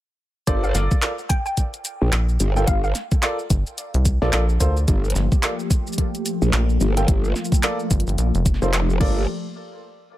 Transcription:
0.47 G1 F4 A4 A#4 C5 D5, kick, closed hi-hat, shaker
0.64 F5, shaker
0.74 G1 F5, snare, closed hi-hat, shaker
0.91 kick, shaker
1.02 F4 A4 A#4 D5, clap, closed hi-hat, shaker
1.19 shaker
1.29 G5, kick, closed hi-hat, shaker
1.46 G5, shaker
1.57 kick, closed hi-hat, shaker
1.74 closed hi-hat, shaker
1.85 closed hi-hat, shaker
2.02 A#1
2.12 A#1, clap, closed hi-hat, shaker
2.29 shaker
2.40 G1, closed hi-hat, shaker
2.56 F4 A4 A#4 G5, shaker
2.67 G1 F5, kick, closed hi-hat, shaker
2.84 F5, shaker
2.95 snare, closed hi-hat, shaker
3.11 kick, closed hi-hat, shaker
3.23 F4 A4 A#4 D5, clap, closed hi-hat, shaker
3.39 shaker
3.50 G1, kick, closed hi-hat, shaker
3.67 shaker
3.78 closed hi-hat, shaker
3.94 C2, closed hi-hat, shaker
4.05 kick, closed hi-hat, shaker
4.22 A#1 F4 A4 A#4 D5, snare
4.33 A#1 F4 A4 A#4 D5, clap, closed hi-hat, shaker
4.49 shaker
4.60 D2 F4 A4 A#4 C5, kick, closed hi-hat, shaker
4.77 shaker
4.88 G1 F3 A3 A#3 G4, kick, closed hi-hat, shaker
5.05 shaker
5.10 closed hi-hat
5.15 G1, snare, shaker
5.32 kick, shaker
5.43 F4 A4 A#4 D5, clap, closed hi-hat, shaker
5.60 shaker
5.70 kick, closed hi-hat, shaker
5.87 shaker
5.93 shaker
5.98 kick, closed hi-hat
6.15 closed hi-hat, shaker
6.26 closed hi-hat, shaker
6.42 A#1, shaker
6.53 A#1, clap, closed hi-hat, shaker
6.70 shaker
6.81 G1, shaker
6.97 F4 A4 A#4 G5, closed hi-hat, shaker
7.08 G1 F4, kick, closed hi-hat, shaker
7.25 shaker
7.36 snare, shaker
7.45 shaker
7.52 kick, closed hi-hat, shaker
7.54 shaker
7.63 F4 A4 A#4 D5, clap, closed hi-hat, shaker
7.80 shaker
7.91 G1, kick, closed hi-hat, shaker
8.00 closed hi-hat
8.07 G1, closed hi-hat, shaker
8.18 A#1, closed hi-hat, shaker
8.35 F1, closed hi-hat, shaker
8.46 kick, closed hi-hat, shaker
8.54 snare
8.62 F1 F4 A4 A#4 C5, shaker
8.73 clap, closed hi-hat, shaker
8.90 shaker
9.00 G1 F3 A3 A#3 F4 G4 A4 A#4 D5, kick, crash

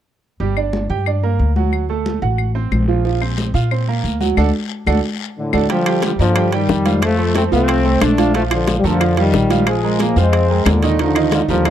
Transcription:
0.40 G1 G3 G4, high conga
0.57 D4 D5, high conga, claves
0.73 high conga
0.90 G2 G4 G5, high conga
1.06 D4 D5, high conga, claves
1.23 A#3 A#4, high conga
1.39 D2, high conga
1.56 F#3 F#4, high conga
1.72 high conga, claves
1.89 A3 A4, high conga
2.06 high conga
2.22 A1 F#4 F#5, high conga
2.38 high conga, claves
2.55 C4 C5, high conga
2.72 A#1, high conga, claves
2.88 F3 F4
3.05 F3 F4, high conga, long guiro
3.21 C4 C5, high conga, claves
3.38 high conga, short guiro
3.54 A#2 F4 F5, high conga, short guiro
3.71 C4 C5, high conga, long guiro, claves
3.88 A#3 A#4, high conga
4.04 D2, high conga, short guiro
4.20 F#3 F#4, high conga, short guiro
4.37 D2 D4 F#4 A4, high conga, long guiro, claves
4.87 D2 D4 F#4 A4, high conga, long guiro, claves
5.39 A2 D3
5.53 D2 D4 F#4 A4, high conga, long guiro, claves
5.70 D3 F3 G3 G4 G5, high bongo, high conga, high timbale, long guiro
5.86 G3 G4 G5, high bongo, high conga, high timbale, claves
6.02 D3 F3, high bongo, high conga, high timbale, short guiro
6.19 G2 D3 F3 A#3 A#4 D5, high bongo, high conga, short guiro
6.36 G3 G4 G5, high bongo, high conga, high timbale, long guiro, claves
6.52 D#3 G3 G4 G5, high bongo, high conga, high timbale
6.69 F2, high bongo, low bongo, high conga, short guiro
6.85 F3 F4 F5, high conga, high timbale, short guiro
7.02 F3 A3, high bongo, high conga, high timbale, long guiro, claves
7.18 A3 A4 C5, high bongo, high conga
7.35 A3 C4 A4 C5, high bongo, high conga, high timbale, short guiro
7.51 C2 F3 A3 C4 F4 F5, high conga, short guiro
7.68 high bongo, high conga, high timbale, long guiro, claves
7.85 A3 A4 C5, high bongo, high conga
8.01 A#1 A3 D4, high bongo, low bongo, high conga, high timbale, short guiro, claves
8.17 F3 F4 F5, high bongo, high conga, high timbale, short guiro
8.34 F3 A3 F4 F5, high bongo, high conga, high timbale, long guiro
8.51 D3 F3 F4 F5, high bongo, high conga, high timbale, claves
8.67 high bongo, high conga, high timbale, short guiro
8.78 G3
8.84 F2 D3 F3 A3 A4 A#4, high bongo, high conga, short guiro
9.00 F3 F4 F5, high bongo, high conga, high timbale, long guiro, claves
9.17 D#3 F3 G3 F4 F5, high bongo, high conga, high timbale
9.34 A#1, high bongo, low bongo, high conga, short guiro
9.50 F3 F4 F5, high conga, high timbale, short guiro
9.67 F3 G#3, high bongo, high timbale, long guiro, claves
9.83 G#3 G#4 A#4, high bongo, high conga
9.99 F3 G#3 A#3 G#4 A#4, high bongo, high conga, high timbale, short guiro
10.16 F2 F3 G#3 C4 F4 F5, short guiro
10.33 high bongo, high conga, high timbale, long guiro, claves
10.49 G#3 G#4 A#4, high bongo, high conga
10.65 D#2 A#2 D3, high bongo, low bongo, high conga, high timbale, low timbale, short guiro, claves
10.83 D#3 D#4 D#5, high bongo, high timbale, short guiro
10.99 D3 D#3 F3 D#4 D#5, high bongo, high timbale, long guiro
11.15 D#3 D#4 D#5, high bongo, high conga, high timbale, claves
11.32 D3 F3, high bongo, high conga, high timbale, short guiro
11.48 D#2 D3 F3 G3 G4 A#4, high bongo, high conga, short guiro
11.65 D#3 D#4 D#5, high bongo, high conga, high timbale, long guiro, claves

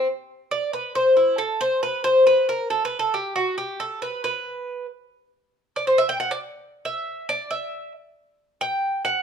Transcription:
0.51 D5
0.73 B4
0.95 C5
1.17 E4
1.38 A4
1.61 C5
1.83 B4
2.04 C5
2.27 B4
2.49 A#4
2.70 A4
2.85 B4
2.99 A4
3.14 G4
3.36 F#4
3.58 G4
3.80 A4
4.02 B4
4.24 B4
5.76 D5
5.87 C5
5.98 E5
6.09 G5
6.20 F#5
6.31 D5
6.85 E5
7.29 D5
7.51 E5
8.61 G5
9.05 F#5

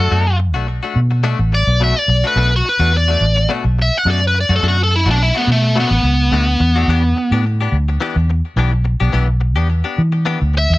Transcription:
Already playing: A4
0.00 A3 D4 F#4
0.11 F#2 B2 A3 D4 F#4
0.27 muted clean electric guitar stroke
0.39 muted clean electric guitar stroke
0.54 B1 A3 D4 F#4
0.67 muted clean electric guitar stroke
0.83 A3 D4 F#4
0.95 B2
1.11 muted clean electric guitar stroke
1.23 B2 A3 D4 F#4
1.39 A1, muted clean electric guitar stroke
1.52 D5, muted clean electric guitar stroke
1.67 B1
1.80 B2 A3 D4 F#4 E5
1.99 D5
2.08 B1, muted clean electric guitar stroke
2.24 A3 D4 F#4 B4
2.36 B1 B2 A3 D4 F#4
2.52 muted clean electric guitar stroke
2.56 F#4
2.65 muted clean electric guitar stroke
2.69 B4
2.79 E2 A3 D4 F#4
2.93 D5, muted clean electric guitar stroke
3.08 A3 D4 F#4
3.20 A1
3.36 muted clean electric guitar stroke
3.49 B2 A3 D4 F#4
3.64 B1, muted clean electric guitar stroke
3.79 E5, muted clean electric guitar stroke
3.97 F#5
4.05 F#2 B2 A3 D4 F#4
4.11 D5
4.22 muted clean electric guitar stroke
4.27 B4
4.34 muted clean electric guitar stroke
4.40 D5
4.49 F#2 A3 D4 F#4
4.56 A4
4.62 F#2 B2 A3 D4 F#4
4.68 F#4
4.78 muted clean electric guitar stroke
4.83 A4
4.90 muted clean electric guitar stroke
4.96 E4
5.06 B1 A3 D4 F#4
5.11 D4
5.19 E4, muted clean electric guitar stroke
5.35 A3 B3 D4 F#4
5.47 B2
5.52 A3
5.64 muted clean electric guitar stroke
5.76 B2 A3 D4 F#4
5.80 B3
5.90 A1, muted clean electric guitar stroke
6.03 C#2, muted clean electric guitar stroke
6.31 D2 B2 A3 D4 F#4
6.47 muted clean electric guitar stroke
6.60 E2, muted clean electric guitar stroke
6.76 A3 D4 F#4
6.88 E2 E3 B3 D4 G4
7.04 muted clean electric guitar stroke
7.17 muted clean electric guitar stroke
7.31 A2 B3 D4 G4
7.45 muted clean electric guitar stroke
7.61 B3 D4 G4
7.72 D2
7.89 muted clean electric guitar stroke
8.00 E3 B3 D4 G4
8.16 E2, muted clean electric guitar stroke
8.30 muted clean electric guitar stroke
8.56 B1 E3 B3 D4 G4
8.73 muted clean electric guitar stroke
8.85 muted clean electric guitar stroke
9.00 B1 B3 D4 G4
9.13 B1 E3 B3 D4 G4
9.27 muted clean electric guitar stroke
9.40 muted clean electric guitar stroke
9.56 E2 B3 D4 G4
9.69 muted clean electric guitar stroke
9.84 B3 D4 G4
9.98 E3
10.12 muted clean electric guitar stroke
10.25 E3 B3 D4 G4
10.40 D2, muted clean electric guitar stroke
10.54 muted clean electric guitar stroke
10.58 E5
10.70 E2 E5

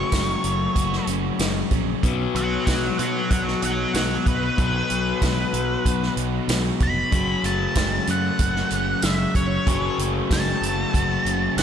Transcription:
Already playing: F#2 C#3 F#3 A3 C#4 F#4 C#5
0.11 F#1 F#3, kick, snare, closed hi-hat, tambourine
0.44 F#1 A3, closed hi-hat
0.75 F#1 F#4, kick, closed hi-hat
0.93 snare
1.07 F#1 C#4, closed hi-hat
1.39 F#1 F#3, snare, closed hi-hat, tambourine
1.71 A#1 C#4, kick, closed hi-hat
2.03 B1 B2 F#3 B3, kick, closed hi-hat
2.35 B1 B3 C#5 F#5, closed hi-hat
2.66 B1 F#3 C#5 F#5, kick, snare, closed hi-hat, tambourine
2.99 B2 B3 C#5 F#5, closed hi-hat
3.31 B1 F#4 C#5 F#5, kick, closed hi-hat
3.48 snare
3.62 B1 D#4 C#5 F#5, closed hi-hat
3.94 B1 F#3 C#5 F#5, snare, closed hi-hat, tambourine
4.26 B1 D#4 B4, kick, closed hi-hat
4.58 B1 B2 F#3 B3, kick, closed hi-hat
4.90 B1 B3, closed hi-hat
5.21 B1 F#3, kick, snare, closed hi-hat, tambourine
5.53 B1 B3, closed hi-hat
5.85 B1 F#4, kick, closed hi-hat
6.03 snare
6.17 B1 D#4, closed hi-hat
6.48 B1 F#3, snare, closed hi-hat, tambourine
6.80 F1 D#4 B5, kick, closed hi-hat
7.12 F#1 F#2 C#3 F#3, kick, closed hi-hat
7.43 F#1 A3 A5, closed hi-hat
7.76 F#1 F#3, kick, snare, closed hi-hat, tambourine
8.07 F#2 A3 F#5, closed hi-hat
8.39 F#1 F#4, kick, closed hi-hat
8.56 snare
8.71 F#1 C#4, closed hi-hat
9.02 F#1 F#3 E5, snare, closed hi-hat, tambourine
9.35 F#1 C#4 C#5, kick, closed hi-hat
9.67 F#1 F#2 C#3 F#3, kick, closed hi-hat
9.98 F#1 A3, closed hi-hat
10.30 F#1 F#3 A5, kick, snare, closed hi-hat, tambourine
10.61 F#1 A3, closed hi-hat
10.94 F#1 F#4, kick, closed hi-hat
11.25 F#1 C#4, closed hi-hat
11.57 F#1 F#3 F#5, snare, closed hi-hat, tambourine

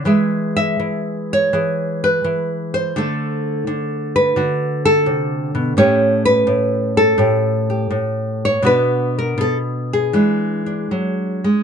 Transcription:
0.05 E3 G#3 G#4 E5
0.57 E5
0.80 E3
1.33 C#5
1.53 E3 G#4
2.04 B4
2.24 E3
2.74 C5
2.96 D3 A3 A4
3.67 D3
4.16 B4
4.36 D3 F#4
4.85 A4
5.06 C3
5.55 B2
5.77 A2 A3 C#4 G4 C#5
6.25 B4
6.47 A2
6.97 A4
7.18 A2 G4
7.70 G4
7.90 A2
8.45 C#5
8.62 B2 B3 D4 F#4 B4
9.19 A#4
9.38 B2 A4
9.93 G#4
10.13 E3 G#3 D4
10.66 D4
10.91 F#3
11.44 G#3

